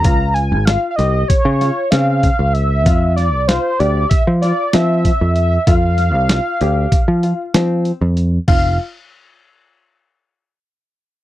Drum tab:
CC |---------|---------|---------|x--------|
HH |xxxxxxxxx|xxxxxxxxx|xxxxxxxxx|---------|
SD |--oo-oo--|-oo--oo--|-oo---o--|---------|
BD |o---o--o-|o---o--o-|o---o----|o--------|